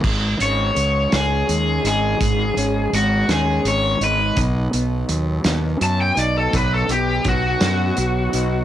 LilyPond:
<<
  \new Staff \with { instrumentName = "Overdriven electric guitar" } { \time 6/8 \key gis \phrygian \tempo 4. = 55 r8 cis''4 gis'4 gis'8~ | gis'4 fis'8 gis'8 cis''8 b'8 | r2 a''16 g''16 d''16 a'16 | b'16 a'16 g'8 fis'2 | }
  \new Staff \with { instrumentName = "Clean electric guitar" } { \time 6/8 \key gis \phrygian gis,8 cis'8 gis8 cis'8 gis8 dis'8 | gis,8 cis'8 gis8 cis'8 gis8 dis'8 | b,8 b8 fis8 b8 fis8 dis'8 | b,8 b8 fis8 b8 fis8 dis'8 | }
  \new Staff \with { instrumentName = "Fingered electric bass" } { \clef bass \time 6/8 \key gis \phrygian gis,,8 gis,,8 cis,8 cis,8 dis,8 gis,,8 | gis,,8 gis,,8 gis,,8 dis,8 gis,,8 gis,,8 | b,,8 b,,8 dis,8 dis,8 fis,8 b,,8 | b,,8 b,,8 b,,8 fis,8 b,,8 b,,8 | }
  \new DrumStaff \with { instrumentName = "Drums" } \drummode { \time 6/8 <cymc bd>8 hh8 hh8 <hh sn>8 hh8 hh8 | <hh bd>8 hh8 hh8 <hh sn>8 hh8 hh8 | <hh bd>8 hh8 hh8 <hh sn>8 hh8 hh8 | <hh bd>8 hh8 <hh bd>8 <hh sn>8 hh8 hh8 | }
>>